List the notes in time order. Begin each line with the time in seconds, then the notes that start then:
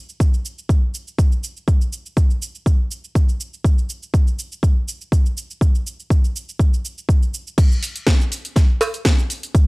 0.09 shaker
0.20 kick, shaker
0.34 shaker
0.45 shaker
0.58 shaker
0.69 kick, shaker
0.94 shaker
1.08 shaker
1.18 kick, shaker
1.32 shaker
1.44 shaker
1.57 shaker
1.68 kick, shaker
1.81 shaker
1.93 shaker
2.06 shaker
2.17 kick, shaker
2.30 shaker
2.42 shaker
2.55 shaker
2.66 kick, shaker
2.91 shaker
3.04 shaker
3.15 kick, shaker
3.29 shaker
3.40 shaker
3.54 shaker
3.64 kick, shaker
3.78 shaker
3.90 shaker
4.03 shaker
4.14 kick, shaker
4.27 shaker
4.39 shaker
4.52 shaker
4.63 kick, shaker
4.88 shaker
5.01 shaker
5.12 kick, shaker
5.26 shaker
5.37 shaker
5.50 shaker
5.61 kick, shaker
5.75 shaker
5.87 shaker
6.00 shaker
6.10 kick, shaker
6.24 shaker
6.36 shaker
6.49 shaker
6.59 kick, shaker
6.74 shaker
6.85 shaker
6.98 shaker
7.09 kick, shaker
7.23 shaker
7.34 shaker
7.47 shaker
7.58 kick, closed hi-hat, crash, shaker
7.72 shaker
7.83 open hi-hat, shaker
7.96 closed hi-hat, shaker
8.07 kick, snare, closed hi-hat, shaker
8.21 shaker
8.32 open hi-hat, shaker
8.45 closed hi-hat, shaker
8.56 kick, snare, closed hi-hat, shaker
8.81 open hi-hat, cowbell, shaker
8.94 closed hi-hat, shaker
9.05 kick, snare, closed hi-hat, shaker
9.19 shaker
9.30 open hi-hat, shaker
9.43 closed hi-hat, shaker
9.55 kick, closed hi-hat, shaker